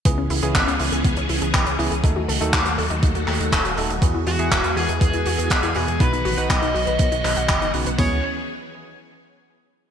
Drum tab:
HH |x-oxxxoxxxoxxxox|x-oxxxoxxxoxxxox|x-oxxxoxxxoxxxox|xxoxxxoxxxoxxxox|
CP |----x-------x---|----x-----x-x---|----x-------x---|----x-----x-x---|
FT |----------------|----------------|----------------|----------------|
BD |o---o---o---o---|o---o---o---o---|o---o---o---o---|o---o---o---o---|

HH |o---------------|
CP |----------------|
FT |o---------------|
BD |o---------------|